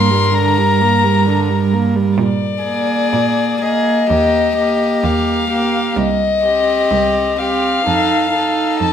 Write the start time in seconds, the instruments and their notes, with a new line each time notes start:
Already playing: cello G2, viola A#3, violin A#4 C6
0.11 viola G3
0.34 viola D3, violin A#5
0.58 viola G3
0.81 viola A#3
1.03 viola G3
1.26 viola D3
1.50 viola G3
1.73 viola A#3
1.96 viola G3
2.18 cello A#2, violin D5
2.64 viola A#3, violin G#4
3.14 cello A#2
3.61 viola A#3, violin G#4 D#5
4.10 cello D#2, viola A#3, violin G4
4.57 viola A#3, violin G4
5.04 cello D#2, violin F5
5.50 viola A#3, violin G4
5.97 cello C2, violin D#5
6.45 viola C4, violin G4
6.92 cello C2
7.39 viola C4, violin G4 F5
7.86 cello F2, viola D#4, violin A4
8.33 viola D#4, violin A4
8.81 cello F2, violin A5